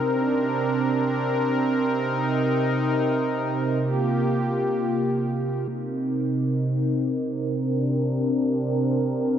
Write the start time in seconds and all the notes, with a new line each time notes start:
Already playing: C4 A#4
0.06 C3 D4
1.93 D#4
3.81 A#3 F4 G4
5.68 C3 C4 D#4 A#4
7.56 C3 D4